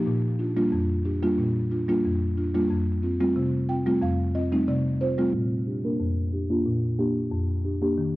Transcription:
0.06 A#2
0.39 D4 F4
0.56 G3 A#3 D4 F4
0.72 F2
1.05 D4 G4
1.22 G3 A#3 D4 F4
1.38 A#2
1.71 D4 F4
1.88 G3 A#3 D4 F4
2.04 F2
2.37 D4 F4
2.54 G3 A#3 D4 F4
2.70 F2
3.03 C4 F4
3.20 G3 A3 C4 F4
3.36 C3
3.69 C4 F4 G5
3.86 G3 A3 C4 F4
4.02 F2 F5
4.35 C4 F4 D#5
4.52 G3 A3 C4 D#4
4.68 C3 D5
5.01 C4 F4 C5
5.18 G3 A3 C4 F4
5.34 A#2
5.67 D4 G4
5.84 A#3 D4 A#4
6.00 F2
6.33 D4 G4
6.50 A#3 D4 F4
6.66 A#2
6.98 A#3 D4 G4
7.31 F2
7.64 D4 G4
7.82 A#3 D4 G4
7.98 D#3

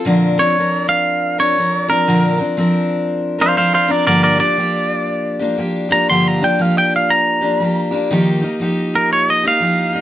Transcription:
0.05 A#2 D3 F3 C4 D4 A#4
0.38 F3 C4 D4 A#4 C#5
0.57 F3 C4 D4 A#4
0.89 F5
1.38 F3 C4 D4 A#4 C#5
1.57 F3 C4 D4 A#4
1.88 F3 C4 D4 A#4
2.07 A#2 D3 F3 C4 D4 A#4
2.38 F3 C4 D4 A#4
2.57 F3 C4 D4 A#4
3.39 F3 C4 D4 A#4 C5 F5
3.57 F3 C4 D4 A#4 C5 F5
3.74 C5 F5
3.88 F3 C4 D4 A#4 D5
4.06 G2 D3 F3 A#3 D4 G4 A#4 D5
4.23 A#4 D5
4.38 F3 A#3 D4 G4 D5
4.57 F3 A#3 D4 G4
5.39 F3 A#3 D4 G4
5.57 F3 A#3 D4 G4
5.89 F3 A#3 D4 G4 A#5
6.09 G2 D3 F3 A#3 D4 G4 C6
6.28 A#5
6.40 F3 A#3 D4 G4 G5
6.59 F3 A#3 D4 G4 F5
6.78 G5
6.96 F5
7.10 A#5
7.41 F3 A#3 D4 G4
7.60 F3 A#3 D4 G4
7.91 F3 A#3 D4 G4
8.11 D#3 F3 A#3 D#4 G4
8.41 A#3 D#4 G4
8.60 F3 A#3 D#4 G4
8.95 A#4
9.13 C#5
9.30 D#5
9.43 A#3 D#4 G4
9.48 F5
9.60 F3 A#3 D#4 G4
9.93 A#3 D#4 G4

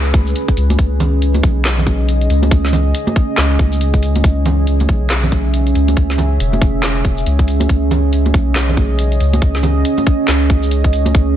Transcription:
Already playing: C#2 C#4 G#4 B4
0.14 kick, closed hi-hat, high conga
0.27 shaker
0.36 closed hi-hat
0.48 kick, closed hi-hat
0.57 C#2, open hi-hat, shaker
0.70 closed hi-hat, high conga
0.79 C#2 D#5, kick, closed hi-hat
1.00 closed hi-hat, low conga, shaker
1.22 closed hi-hat
1.34 closed hi-hat, high conga
1.43 B1, kick, open hi-hat
1.65 snare, clap, closed hi-hat
1.78 low conga, shaker
1.87 kick, closed hi-hat, high conga
2.09 closed hi-hat
2.21 closed hi-hat
2.30 C#2, open hi-hat
2.43 closed hi-hat, high conga
2.51 kick, closed hi-hat
2.65 snare
2.73 closed hi-hat, low conga, shaker
2.95 closed hi-hat
3.07 closed hi-hat, high conga
3.16 kick, open hi-hat
3.38 C#2, snare, clap, closed hi-hat
3.59 kick, closed hi-hat, high conga
3.72 shaker
3.81 closed hi-hat
3.94 kick, closed hi-hat
4.03 open hi-hat, shaker
4.15 closed hi-hat, high conga
4.24 C#2 E5, kick, closed hi-hat
4.46 closed hi-hat, low conga, shaker
4.67 closed hi-hat
4.80 closed hi-hat, high conga
4.89 B1, kick, open hi-hat
5.10 snare, clap, closed hi-hat
5.23 low conga, shaker
5.32 kick, closed hi-hat, high conga
5.54 closed hi-hat
5.67 closed hi-hat
5.75 C#2, open hi-hat
5.88 closed hi-hat, high conga
5.97 kick, closed hi-hat
6.10 snare
6.18 closed hi-hat, low conga, shaker
6.40 E1, closed hi-hat
6.53 closed hi-hat, high conga
6.62 kick, open hi-hat
6.83 snare, clap, closed hi-hat
7.05 kick, closed hi-hat, high conga
7.18 shaker
7.26 C#2, closed hi-hat
7.39 kick, closed hi-hat
7.48 open hi-hat, shaker
7.60 closed hi-hat, high conga
7.69 C#2 D#5, kick, closed hi-hat
7.91 closed hi-hat, low conga, shaker
8.13 closed hi-hat
8.26 closed hi-hat, high conga
8.34 B1, kick, open hi-hat
8.56 snare, clap, closed hi-hat
8.69 low conga, shaker
8.77 kick, closed hi-hat, high conga
8.99 closed hi-hat
9.12 closed hi-hat
9.20 C#2, open hi-hat
9.33 closed hi-hat, high conga
9.42 kick, closed hi-hat
9.55 snare
9.63 closed hi-hat, low conga, shaker
9.85 closed hi-hat
9.98 closed hi-hat, high conga
10.07 kick, open hi-hat
10.28 C#2, snare, clap, closed hi-hat
10.50 kick, closed hi-hat, high conga
10.63 shaker
10.71 closed hi-hat
10.84 kick, closed hi-hat
10.93 open hi-hat, shaker
11.06 closed hi-hat, high conga
11.15 C#2, kick, closed hi-hat

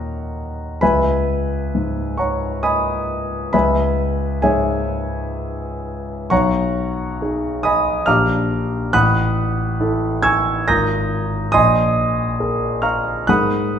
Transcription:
Already playing: D#2 A#2 A#4 C#5 D#5 F#5 A#5 C#6
0.81 C#2 B4 E5 G#5 B5
1.75 G#2
2.17 C#5 F#5 A#5 C#6
2.63 D#5 G#5 B5 D#6
3.53 C#2 B4 E5 G#5 B5
4.42 G#2 G#4 C#5 E5 G#5
6.30 B1 C#5 F#5 A#5 C#6
7.21 D#4 G#4
7.63 D#5 G#5 B5 D#6
8.06 A#1 D4 G4 F5 A#5 D6 F6
8.93 A1 F#5 B5 D#6 F#6
9.80 E4 A4
10.23 G#5 C#6 E6 G#6
10.68 G#1 F4 A#4 A#5 D#6 G6 A#6
11.52 A#1 D#5 G#5 C6 D#6
12.40 G#4 A#4
12.82 F5 A#5 C#6 F6
13.27 G#2 G#4 A#4 F#5 B5 D#6 F#6

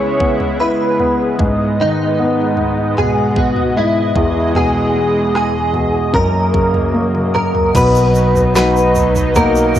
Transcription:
Already playing: C#3 G#3 B3 E4 C#5
0.20 B3, kick
0.40 floor tom
0.60 E4 B4
1.00 B3, floor tom
1.38 G#2 D#5, kick, floor tom
1.80 D#3 D#4
2.20 B3
2.57 floor tom
2.97 B2 G#4, floor tom
3.36 B3 F#4, kick
3.56 floor tom
3.76 G#2 E4
4.15 E2 E3 G#3, kick, floor tom
4.55 B2 G#4, floor tom
4.94 G#3
5.35 G#4, cross-stick
5.73 B2, floor tom
6.13 F#2 F#3 A#3 A#4, kick, floor tom
6.54 C#3, kick
6.74 floor tom
6.93 A#3, high tom
7.15 mid tom
7.35 A#4, mid tom
7.55 floor tom
7.75 B1 B2 F#3 D#4 B4, kick, floor tom, crash, shaker
7.95 shaker
8.15 shaker
8.35 floor tom, shaker
8.55 F#3 B3 D#4 B4, snare, shaker
8.76 shaker
8.95 floor tom, shaker
9.16 floor tom, shaker
9.35 A#3 B3 D#4 A#4, kick, floor tom, shaker
9.55 shaker
9.75 F#2, shaker

